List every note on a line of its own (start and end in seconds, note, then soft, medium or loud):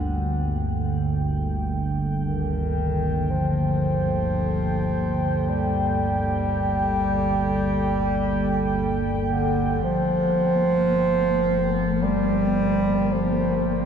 0.00 9.81 G1 medium
0.00 9.93 D2 medium
0.00 0.51 D3 medium
0.00 13.85 A#3 medium
0.00 13.85 A4 medium
0.00 13.85 G5 medium
2.22 3.32 D#3 medium
3.30 5.51 F3 medium
5.49 9.12 G3 loud
9.29 9.85 D3 medium
9.82 13.85 G1 medium
9.82 12.04 F3 loud
9.82 13.85 A#3 medium
12.03 13.14 G3 loud
13.12 13.85 F3 medium